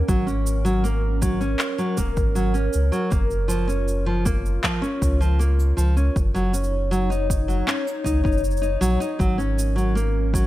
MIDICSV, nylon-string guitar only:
0, 0, Header, 1, 2, 480
1, 0, Start_track
1, 0, Tempo, 759494
1, 53, Time_signature, 4, 2, 24, 8
1, 6616, End_track
2, 0, Start_track
2, 0, Title_t, "Nylon-string guitar"
2, 0, Program_c, 0, 24
2, 52, Note_on_c, 0, 54, 68
2, 161, Note_off_c, 0, 54, 0
2, 169, Note_on_c, 0, 61, 64
2, 399, Note_off_c, 0, 61, 0
2, 409, Note_on_c, 0, 54, 74
2, 519, Note_off_c, 0, 54, 0
2, 529, Note_on_c, 0, 58, 78
2, 759, Note_off_c, 0, 58, 0
2, 768, Note_on_c, 0, 54, 64
2, 879, Note_off_c, 0, 54, 0
2, 889, Note_on_c, 0, 61, 69
2, 1119, Note_off_c, 0, 61, 0
2, 1127, Note_on_c, 0, 54, 71
2, 1238, Note_off_c, 0, 54, 0
2, 1246, Note_on_c, 0, 58, 70
2, 1478, Note_off_c, 0, 58, 0
2, 1487, Note_on_c, 0, 54, 69
2, 1598, Note_off_c, 0, 54, 0
2, 1605, Note_on_c, 0, 61, 69
2, 1837, Note_off_c, 0, 61, 0
2, 1844, Note_on_c, 0, 54, 77
2, 1957, Note_off_c, 0, 54, 0
2, 1961, Note_on_c, 0, 58, 74
2, 2195, Note_off_c, 0, 58, 0
2, 2199, Note_on_c, 0, 53, 71
2, 2314, Note_off_c, 0, 53, 0
2, 2323, Note_on_c, 0, 61, 73
2, 2556, Note_off_c, 0, 61, 0
2, 2568, Note_on_c, 0, 53, 73
2, 2678, Note_off_c, 0, 53, 0
2, 2688, Note_on_c, 0, 58, 67
2, 2918, Note_off_c, 0, 58, 0
2, 2930, Note_on_c, 0, 53, 78
2, 3039, Note_off_c, 0, 53, 0
2, 3045, Note_on_c, 0, 61, 76
2, 3277, Note_off_c, 0, 61, 0
2, 3289, Note_on_c, 0, 53, 75
2, 3399, Note_off_c, 0, 53, 0
2, 3407, Note_on_c, 0, 58, 73
2, 3638, Note_off_c, 0, 58, 0
2, 3645, Note_on_c, 0, 53, 72
2, 3757, Note_off_c, 0, 53, 0
2, 3771, Note_on_c, 0, 61, 69
2, 3892, Note_off_c, 0, 61, 0
2, 4010, Note_on_c, 0, 54, 70
2, 4120, Note_off_c, 0, 54, 0
2, 4128, Note_on_c, 0, 61, 66
2, 4359, Note_off_c, 0, 61, 0
2, 4368, Note_on_c, 0, 54, 78
2, 4479, Note_off_c, 0, 54, 0
2, 4487, Note_on_c, 0, 63, 75
2, 4718, Note_off_c, 0, 63, 0
2, 4728, Note_on_c, 0, 54, 64
2, 4839, Note_off_c, 0, 54, 0
2, 4848, Note_on_c, 0, 61, 69
2, 4959, Note_off_c, 0, 61, 0
2, 5083, Note_on_c, 0, 63, 71
2, 5196, Note_off_c, 0, 63, 0
2, 5205, Note_on_c, 0, 63, 64
2, 5317, Note_off_c, 0, 63, 0
2, 5446, Note_on_c, 0, 63, 68
2, 5557, Note_off_c, 0, 63, 0
2, 5567, Note_on_c, 0, 54, 95
2, 5678, Note_off_c, 0, 54, 0
2, 5689, Note_on_c, 0, 63, 97
2, 5799, Note_off_c, 0, 63, 0
2, 5808, Note_on_c, 0, 54, 69
2, 5919, Note_off_c, 0, 54, 0
2, 5928, Note_on_c, 0, 61, 63
2, 6159, Note_off_c, 0, 61, 0
2, 6166, Note_on_c, 0, 54, 71
2, 6278, Note_off_c, 0, 54, 0
2, 6290, Note_on_c, 0, 58, 75
2, 6520, Note_off_c, 0, 58, 0
2, 6533, Note_on_c, 0, 54, 60
2, 6616, Note_off_c, 0, 54, 0
2, 6616, End_track
0, 0, End_of_file